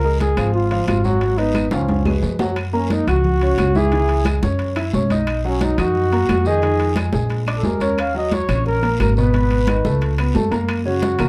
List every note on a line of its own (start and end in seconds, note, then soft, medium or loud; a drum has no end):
0.00 0.32 C#2 medium
0.00 0.20 A#4 medium
0.04 0.32 G#3 medium
0.04 0.32 G#4 medium
0.04 0.32 A#4 medium
0.04 high conga soft
0.20 0.52 G#4 medium
0.20 high conga medium
0.20 high timbale medium
0.20 low timbale medium
0.20 short guiro medium
0.37 0.84 G#1 medium
0.37 0.65 F3 medium
0.37 0.65 F4 medium
0.37 0.65 F5 medium
0.37 high conga soft
0.37 high timbale medium
0.37 short guiro medium
0.37 claves medium
0.54 0.85 F4 medium
0.54 high conga soft
0.54 long guiro medium
0.71 0.99 F3 medium
0.71 0.99 F4 medium
0.71 0.99 F5 medium
0.71 high conga soft
0.71 high timbale medium
0.87 1.66 G#1 medium
0.87 1.06 F4 medium
0.87 high conga medium
0.87 high timbale medium
0.87 low timbale medium
0.87 short guiro medium
0.87 claves medium
1.04 1.18 F#3 medium
1.04 1.39 F#4 medium
1.04 1.19 F#4 medium
1.04 1.19 F#5 medium
1.04 high conga medium
1.04 short guiro medium
1.21 1.36 F#3 medium
1.21 1.36 F#4 medium
1.21 1.36 F#5 medium
1.21 high conga soft
1.21 high timbale medium
1.21 long guiro medium
1.38 1.66 B3 medium
1.38 1.71 D#4 medium
1.38 1.66 B4 medium
1.38 1.66 D#5 medium
1.38 high conga soft
1.38 high timbale medium
1.55 high conga medium
1.55 high timbale medium
1.55 low timbale medium
1.55 short guiro medium
1.55 claves medium
1.71 2.19 C#2 medium
1.71 2.00 F3 medium
1.71 2.19 C#4 medium
1.71 2.00 F4 medium
1.71 2.00 F5 medium
1.71 high conga medium
1.71 high timbale medium
1.71 short guiro medium
1.89 high conga medium
1.89 high timbale medium
1.89 long guiro medium
2.05 2.33 G#3 medium
2.05 2.34 G#4 medium
2.05 2.34 B4 medium
2.05 high conga medium
2.05 low timbale medium
2.05 claves medium
2.22 3.01 F#2 medium
2.22 low conga medium
2.22 low timbale medium
2.22 short guiro medium
2.39 2.54 F#3 medium
2.39 2.54 F#4 medium
2.39 2.54 F#5 medium
2.39 low conga medium
2.39 low timbale medium
2.39 short guiro medium
2.56 high conga soft
2.56 high timbale medium
2.56 long guiro medium
2.56 claves medium
2.73 3.01 A#3 medium
2.73 2.94 C#4 medium
2.73 3.01 A#4 medium
2.73 3.01 A#5 medium
2.73 high conga soft
2.90 3.11 D#4 medium
2.90 high conga medium
2.90 high timbale medium
2.90 low timbale medium
2.90 short guiro medium
3.07 3.54 C#2 medium
3.07 3.35 F#4 medium
3.07 3.79 F#4 loud
3.07 3.35 F#5 medium
3.07 3.36 F#6 medium
3.07 high conga soft
3.07 low conga medium
3.07 high timbale medium
3.07 short guiro medium
3.07 claves medium
3.24 high conga soft
3.24 low conga medium
3.24 long guiro medium
3.41 3.69 C#4 medium
3.41 3.69 C#5 medium
3.41 3.70 C#6 medium
3.41 high conga soft
3.41 high timbale medium
3.58 4.37 C#2 medium
3.58 high conga medium
3.58 high timbale medium
3.58 low timbale medium
3.58 short guiro medium
3.58 claves medium
3.75 3.89 E3 medium
3.75 3.89 E4 medium
3.75 4.27 G#4 loud
3.75 3.89 E5 medium
3.75 high conga medium
3.75 short guiro medium
3.92 4.20 E3 medium
3.92 4.20 E4 medium
3.92 4.20 E5 medium
3.92 high conga soft
3.92 high timbale medium
3.92 long guiro medium
4.09 high conga soft
4.09 high timbale medium
4.25 4.39 G#3 medium
4.25 4.40 G#4 medium
4.25 4.40 G#5 medium
4.25 high conga medium
4.25 high timbale medium
4.25 low timbale medium
4.25 short guiro medium
4.25 claves medium
4.43 4.90 F#2 medium
4.43 4.70 C#4 medium
4.43 4.71 C#5 medium
4.43 4.70 C#6 medium
4.43 high conga medium
4.43 short guiro medium
4.59 high conga soft
4.59 high timbale medium
4.59 long guiro medium
4.76 4.90 E4 medium
4.76 4.90 E5 medium
4.76 4.91 E6 medium
4.76 high conga soft
4.76 high timbale medium
4.76 claves medium
4.93 5.72 B1 medium
4.93 5.07 C#4 medium
4.93 5.07 C#5 medium
4.93 5.08 C#6 medium
4.93 high conga medium
4.93 low timbale medium
4.93 short guiro medium
5.10 5.39 D#4 medium
5.10 5.39 D#5 medium
5.10 5.39 D#6 medium
5.10 high conga medium
5.10 high timbale medium
5.10 short guiro medium
5.27 high conga soft
5.27 high timbale medium
5.27 long guiro medium
5.27 claves medium
5.45 5.72 F#3 medium
5.45 5.64 C#4 medium
5.45 5.73 F#4 medium
5.45 5.72 F#5 medium
5.45 high conga soft
5.61 5.82 D#4 medium
5.61 high conga medium
5.61 high timbale medium
5.61 low timbale medium
5.61 short guiro medium
5.78 6.25 F#2 loud
5.78 6.06 D#4 medium
5.78 6.49 F#4 medium
5.78 6.06 D#5 medium
5.78 6.06 D#6 medium
5.78 high conga soft
5.78 low conga medium
5.78 high timbale medium
5.78 short guiro medium
5.78 claves medium
5.95 high conga soft
5.95 long guiro medium
6.12 6.40 A#3 medium
6.12 6.40 A#4 medium
6.12 6.40 A#5 medium
6.12 high conga soft
6.12 high timbale medium
6.29 7.07 F2 medium
6.29 high conga medium
6.29 high timbale medium
6.29 low timbale medium
6.29 short guiro medium
6.29 claves medium
6.45 6.60 D#3 medium
6.45 6.60 D#4 medium
6.45 6.97 G#4 loud
6.45 6.60 D#5 medium
6.45 short guiro medium
6.62 6.90 D#3 medium
6.62 6.90 D#4 medium
6.62 6.91 D#5 medium
6.62 high conga soft
6.62 high timbale medium
6.62 long guiro medium
6.79 high conga soft
6.79 high timbale medium
6.96 7.10 G#3 medium
6.96 7.10 G#4 medium
6.96 7.11 G#5 medium
6.96 high conga medium
6.96 high timbale medium
6.96 low timbale medium
6.96 short guiro medium
6.96 claves medium
7.13 7.60 A#1 medium
7.13 7.41 G#3 medium
7.13 7.41 G#4 medium
7.13 7.42 G#5 medium
7.13 high conga medium
7.13 short guiro medium
7.29 high conga soft
7.29 high timbale medium
7.29 long guiro medium
7.46 7.61 D4 medium
7.46 7.61 D5 medium
7.46 7.61 D6 medium
7.46 high conga soft
7.46 high timbale medium
7.46 claves medium
7.58 7.68 A4 medium
7.63 8.43 D#2 medium
7.63 7.78 G#3 medium
7.63 7.78 G#4 medium
7.63 8.01 A#4 medium
7.63 7.78 G#5 medium
7.63 high conga medium
7.63 low timbale medium
7.63 short guiro medium
7.80 8.08 C#4 medium
7.80 8.09 C#5 medium
7.80 8.09 C#6 medium
7.80 high conga medium
7.80 high timbale medium
7.80 short guiro medium
7.98 8.16 F5 medium
7.98 high conga soft
7.98 high timbale loud
7.98 long guiro medium
7.98 claves medium
8.14 8.42 F#3 medium
8.14 8.42 F#4 medium
8.14 8.35 D#5 medium
8.14 8.43 F#5 medium
8.14 high conga soft
8.32 8.66 C#5 medium
8.32 high conga medium
8.32 high timbale medium
8.32 low timbale medium
8.32 short guiro medium
8.49 8.96 A#1 medium
8.49 8.76 C#4 medium
8.49 8.76 C#5 medium
8.49 8.77 C#6 medium
8.49 high conga soft
8.49 low conga medium
8.49 high timbale medium
8.49 short guiro medium
8.49 claves medium
8.66 8.98 A#4 medium
8.66 high conga soft
8.66 low conga medium
8.66 long guiro medium
8.82 9.10 A#3 medium
8.82 9.11 A#4 medium
8.82 9.11 A#5 medium
8.82 high conga soft
8.82 high timbale medium
9.00 9.79 G#1 medium
9.00 9.16 A#4 medium
9.00 high conga medium
9.00 high timbale medium
9.00 low timbale medium
9.00 short guiro medium
9.00 claves medium
9.17 9.31 B2 medium
9.17 9.31 B3 medium
9.17 10.14 B4 medium
9.17 9.31 B4 medium
9.17 short guiro medium
9.33 9.61 B2 medium
9.33 9.62 B3 medium
9.33 9.62 B4 medium
9.33 high conga soft
9.33 high timbale medium
9.33 long guiro medium
9.51 high conga soft
9.51 high timbale medium
9.67 9.82 D#3 medium
9.67 9.82 D#4 medium
9.67 9.82 D#5 medium
9.67 high conga medium
9.67 high timbale medium
9.67 low timbale medium
9.67 short guiro medium
9.67 claves medium
9.85 10.32 C#2 medium
9.85 10.12 A3 medium
9.85 10.13 A4 medium
9.85 10.13 A5 medium
9.85 high conga medium
9.85 short guiro medium
10.01 high conga soft
10.01 high timbale medium
10.01 long guiro medium
10.18 10.32 B3 medium
10.18 10.32 B4 medium
10.18 10.33 B5 medium
10.18 high conga soft
10.18 high timbale medium
10.18 claves medium
10.35 11.14 F#2 medium
10.35 10.49 A3 medium
10.35 10.49 A4 medium
10.35 10.49 A5 medium
10.35 high conga medium
10.35 low timbale medium
10.35 short guiro medium
10.51 10.79 A#3 medium
10.51 10.79 A#4 medium
10.51 10.80 A#5 medium
10.51 high conga medium
10.51 high timbale medium
10.51 short guiro medium
10.69 high conga soft
10.69 high timbale loud
10.69 long guiro medium
10.69 claves medium
10.85 11.13 C#3 medium
10.85 11.13 C#4 medium
10.85 11.29 F#4 medium
10.85 11.13 C#5 medium
10.85 high conga soft
11.02 high conga medium
11.02 high timbale medium
11.02 low timbale medium
11.02 short guiro medium
11.19 11.29 C#2 medium
11.19 11.29 A#3 medium
11.19 11.29 A#4 medium
11.19 11.29 A#5 medium
11.19 high conga soft
11.19 low conga medium
11.19 high timbale medium
11.19 short guiro medium
11.19 claves medium